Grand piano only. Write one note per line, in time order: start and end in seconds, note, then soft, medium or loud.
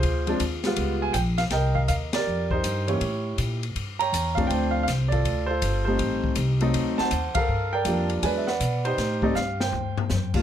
0.00 0.61 F4 medium
0.00 0.61 G#4 medium
0.00 0.36 C5 medium
0.27 0.39 F3 medium
0.27 0.39 G#3 medium
0.27 0.40 C4 medium
0.27 0.40 D4 medium
0.65 1.12 G3 medium
0.65 1.12 G#3 medium
0.65 1.13 B3 medium
0.65 1.13 F4 medium
1.02 1.14 G#5 medium
1.13 1.19 G5 medium
1.38 1.43 F5 medium
1.51 2.14 A#4 medium
1.51 2.23 D#5 medium
1.51 1.77 G5 medium
1.75 1.80 F5 medium
1.88 1.94 F5 medium
2.14 2.52 G4 medium
2.14 2.85 A#4 medium
2.14 2.52 D5 medium
2.51 2.99 D#4 medium
2.51 2.88 G4 medium
2.51 2.89 C5 medium
2.88 2.99 E3 medium
2.88 3.00 G3 medium
2.88 3.00 A#3 soft
2.88 3.00 C#4 medium
2.88 3.60 E4 medium
2.88 3.60 G4 soft
2.88 3.35 C#5 medium
3.99 4.47 C#5 medium
3.99 4.46 G5 medium
3.99 4.38 A#5 loud
4.35 4.84 F3 medium
4.35 4.85 A3 medium
4.35 4.85 C4 medium
4.35 4.85 D4 medium
4.35 4.50 F5 medium
4.47 5.21 C5 medium
4.47 4.74 G5 medium
4.71 4.82 F5 medium
4.83 4.89 F5 medium
5.08 5.49 A4 medium
5.08 5.49 D5 medium
5.12 5.49 F4 medium
5.46 5.96 F4 soft
5.46 5.96 A4 medium
5.46 5.83 C5 medium
5.85 6.34 G3 medium
5.85 6.35 A3 medium
5.85 6.35 C4 medium
5.85 6.58 D#4 medium
5.85 6.58 G4 soft
5.85 6.32 C5 medium
6.61 7.09 F#3 medium
6.61 7.09 A3 medium
6.61 7.09 C4 medium
6.61 7.09 D#4 medium
6.98 7.46 C5 medium
6.98 7.46 F#5 medium
6.98 7.37 A5 loud
7.35 8.07 A4 medium
7.35 7.73 A#4 medium
7.35 7.74 F5 loud
7.73 8.21 A#4 medium
7.73 8.21 D5 medium
7.73 8.08 G5 loud
7.85 8.22 F3 medium
7.85 8.22 G3 soft
7.85 8.22 A#3 medium
7.85 8.23 D4 medium
8.22 8.45 F#3 soft
8.22 8.45 G#3 soft
8.22 8.46 B3 soft
8.22 8.46 D4 medium
8.22 8.48 B4 medium
8.22 8.47 D5 medium
8.22 8.28 G#5 medium
8.37 8.47 E5 medium
8.47 8.95 B4 medium
8.47 8.95 D5 medium
8.47 8.86 F#5 medium
8.85 9.22 D#4 medium
8.85 9.56 G4 medium
8.85 9.24 C5 medium
9.22 9.34 G3 medium
9.22 9.34 A3 medium
9.22 9.35 C4 medium
9.22 9.35 D#4 medium
9.22 9.36 D5 medium
9.35 9.61 F5 medium
9.61 10.32 C5 soft
9.61 10.31 G5 medium
10.34 10.42 G2 medium
10.34 10.42 F3 soft
10.34 10.42 A3 soft
10.34 10.42 A#3 soft
10.34 10.42 F4 medium